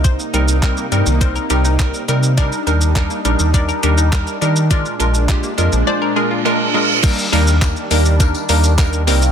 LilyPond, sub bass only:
\new Staff \with { instrumentName = "Sub bass" } { \clef bass \time 4/4 \key ees \major \tempo 4 = 103 c,8 c,4 g,16 c,8. c,4 c8~ | c8 ees,4 bes,,16 ees,8. ees,4 ees8~ | ees8 bes,,4 f,16 bes,,16 r2 | r8 ees,4 ees,4 ees,4 c,8 | }